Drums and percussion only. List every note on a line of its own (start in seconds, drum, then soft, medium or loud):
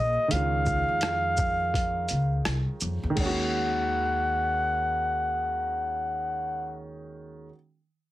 0.31 closed hi-hat medium
0.66 kick medium
0.66 shaker soft
1.01 cross-stick loud
1.01 closed hi-hat medium
1.37 kick medium
1.37 shaker medium
1.74 kick medium
1.74 closed hi-hat medium
2.09 closed hi-hat soft
2.09 shaker soft
2.45 cross-stick loud
2.45 closed hi-hat medium
2.81 shaker medium
3.17 kick loud
3.17 crash medium